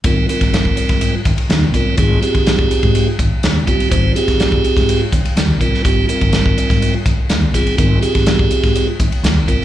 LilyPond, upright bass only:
\new Staff \with { instrumentName = "Upright bass" } { \clef bass \time 4/4 \key aes \major \tempo 4 = 124 aes,,8 r16 aes,,8 aes,,16 r16 aes,8 r16 aes,,16 r16 ees,8 aes,,8 | aes,,8 r16 aes,,8 aes,,16 r16 aes,8 r16 aes,,16 r16 ees,8 aes,,8 | aes,,8 r16 aes,,8 aes,,16 r16 aes,8 r16 aes,,16 r16 ees,8 aes,,8 | aes,,8 r16 aes,,8 aes,,16 r16 aes,8 r16 aes,,16 r16 ees,8 aes,,8 |
aes,,8 r16 aes,,8 aes,,16 r16 aes,8 r16 aes,,16 r16 ees,8 aes,,8 | }